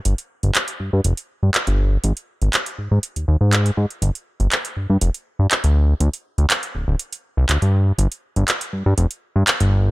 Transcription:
0.05 0.14 G1 loud
0.05 closed hi-hat medium
0.18 closed hi-hat soft
0.43 0.51 G1 medium
0.43 closed hi-hat soft
0.55 clap loud
0.55 closed hi-hat medium
0.68 closed hi-hat soft
0.80 0.90 G2 soft
0.93 1.01 G2 medium
1.04 1.13 F1 medium
1.04 closed hi-hat medium
1.17 closed hi-hat soft
1.43 1.50 G2 medium
1.54 clap loud
1.54 closed hi-hat medium
1.67 1.97 G1 medium
1.67 closed hi-hat soft
2.04 2.12 G#1 loud
2.04 closed hi-hat medium
2.17 closed hi-hat soft
2.42 2.49 G#1 medium
2.42 closed hi-hat soft
2.53 clap loud
2.53 closed hi-hat medium
2.66 closed hi-hat soft
2.78 2.89 G#2 soft
2.91 2.99 G#2 medium
3.03 closed hi-hat medium
3.16 3.25 D#2 soft
3.16 closed hi-hat soft
3.28 3.36 D#2 medium
3.41 3.71 G#2 medium
3.53 clap loud
3.53 closed hi-hat medium
3.66 closed hi-hat soft
3.77 3.86 G#2 medium
3.90 closed hi-hat soft
4.02 4.11 G1 loud
4.02 closed hi-hat medium
4.15 closed hi-hat soft
4.40 4.48 G1 medium
4.40 closed hi-hat soft
4.52 clap medium
4.52 closed hi-hat medium
4.65 closed hi-hat soft
4.77 4.87 G2 soft
4.90 4.97 G2 medium
5.01 5.10 F1 medium
5.01 closed hi-hat medium
5.14 closed hi-hat soft
5.39 5.47 G2 medium
5.51 clap medium
5.51 closed hi-hat medium
5.64 5.94 D2 medium
5.64 closed hi-hat soft
6.00 6.09 D2 loud
6.00 closed hi-hat medium
6.13 closed hi-hat soft
6.38 6.46 D2 medium
6.38 closed hi-hat soft
6.50 clap loud
6.50 closed hi-hat medium
6.63 closed hi-hat soft
6.75 6.85 D1 soft
6.88 6.96 D1 medium
6.99 closed hi-hat medium
7.12 closed hi-hat soft
7.37 7.45 C2 loud
7.49 7.58 D2 medium
7.49 clap loud
7.49 closed hi-hat medium
7.62 7.92 G2 medium
7.62 closed hi-hat soft
7.98 8.07 G1 loud
7.98 closed hi-hat medium
8.12 closed hi-hat soft
8.36 8.44 G1 medium
8.36 closed hi-hat soft
8.48 clap loud
8.48 closed hi-hat medium
8.61 closed hi-hat soft
8.73 8.83 G2 soft
8.86 8.94 G2 medium
8.98 9.06 F1 medium
8.98 closed hi-hat medium
9.11 closed hi-hat soft
9.36 9.43 G2 medium
9.47 clap loud
9.47 closed hi-hat medium
9.60 9.91 G1 medium
9.60 closed hi-hat medium

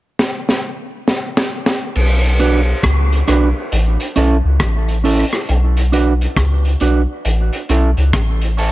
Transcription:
0.19 snare medium
0.49 snare medium
1.08 snare medium
1.37 snare loud
1.66 snare medium
1.95 2.74 B1 loud
1.95 crash medium
2.24 closed hi-hat medium
2.40 2.59 D4 medium
2.40 2.60 F#4 medium
2.40 2.60 B4 medium
2.40 closed hi-hat medium
2.83 3.23 C#2 loud
2.83 kick loud
2.83 cross-stick loud
2.83 closed hi-hat medium
3.12 closed hi-hat soft
3.27 3.53 B1 medium
3.27 3.48 D4 medium
3.27 3.48 F#4 medium
3.27 3.48 B4 medium
3.27 cross-stick medium
3.27 closed hi-hat medium
3.72 3.97 A1 loud
3.72 closed hi-hat medium
4.00 closed hi-hat soft
4.16 4.42 B1 loud
4.16 4.36 C#4 medium
4.16 4.36 E4 medium
4.16 4.37 A4 loud
4.16 closed hi-hat medium
4.45 4.59 C#2 medium
4.60 5.24 A1 medium
4.60 kick loud
4.60 cross-stick medium
4.60 closed hi-hat medium
4.88 closed hi-hat soft
5.04 5.24 C#4 medium
5.04 5.24 E4 medium
5.04 5.25 A4 medium
5.04 open hi-hat medium
5.33 cross-stick medium
5.49 6.27 B1 medium
5.49 closed hi-hat medium
5.77 closed hi-hat soft
5.92 6.12 D4 medium
5.92 6.13 F#4 medium
5.92 6.13 B4 medium
5.92 closed hi-hat medium
6.21 closed hi-hat soft
6.37 6.76 C#2 medium
6.37 kick loud
6.37 cross-stick loud
6.37 closed hi-hat medium
6.65 closed hi-hat soft
6.80 7.06 B1 medium
6.80 7.01 D4 medium
6.80 7.01 F#4 medium
6.80 7.02 B4 medium
6.80 closed hi-hat medium
7.25 7.50 A1 medium
7.25 closed hi-hat medium
7.53 closed hi-hat medium
7.69 7.94 B1 loud
7.69 7.89 C#4 medium
7.69 7.90 E4 medium
7.69 7.90 A4 medium
7.69 closed hi-hat medium
7.97 8.12 C#2 medium
7.97 closed hi-hat soft
8.13 8.72 A1 medium
8.13 kick medium
8.13 cross-stick loud
8.13 closed hi-hat medium
8.42 closed hi-hat soft
8.57 8.72 C#4 medium
8.57 8.72 E4 medium
8.57 8.72 A4 medium
8.57 open hi-hat medium

